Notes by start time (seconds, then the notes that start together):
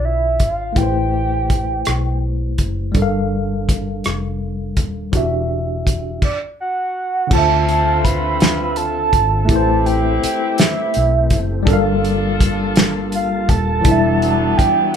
Already playing: B1 D3 D4 F4 C5 D5
0.05 E5
0.40 G#1 F5, kick, closed hi-hat
0.73 A3 E4, kick, closed hi-hat
0.77 A1 G4 B4 G5
0.83 C5
1.50 kick, closed hi-hat
1.85 B1, cross-stick, closed hi-hat
2.58 F#1, kick, closed hi-hat
2.92 G1 G3 D4, kick, closed hi-hat
2.97 A4 A#4
3.02 F5
3.69 kick, closed hi-hat
4.04 F1, cross-stick, closed hi-hat
4.77 D#1, kick, closed hi-hat
5.12 E1 E3 D4 F#4 G4, kick, closed hi-hat
5.17 E5
5.87 kick, closed hi-hat
6.22 D5, kick, crash
6.60 F#5
7.27 D3 A3 C4 D4 F4, kick, crash
7.31 D2 D3 C4 F4 C5 E5 A5
7.38 E5
7.69 closed hi-hat
8.04 B5, kick, closed hi-hat
8.40 snare, closed hi-hat
8.76 A5, closed hi-hat
9.13 G#1, kick, closed hi-hat
9.45 A3 C4 E4 G4, kick
9.49 A1 A3 G4 B4 A5, closed hi-hat
9.56 C5
9.86 G5, closed hi-hat
10.23 G5, muted fingered electric bass stroke, closed hi-hat
10.58 E5, snare, closed hi-hat
10.94 B1, closed hi-hat
11.30 F#1, kick, closed hi-hat
11.63 G3 D4 F4 A4
11.67 G1 G3 A#3 F4 A4 A#4 A5, kick, closed hi-hat
11.73 F5
12.05 closed hi-hat
12.40 kick, closed hi-hat
12.76 snare, closed hi-hat
13.12 F5, closed hi-hat
13.49 D#1 A5, kick, closed hi-hat
13.81 E3 F#3 B3 D4, kick, closed hi-hat
13.86 E1 E3 G3 D4 E4
13.92 E5
14.22 closed hi-hat
14.58 G5, muted fingered electric bass stroke, kick, closed hi-hat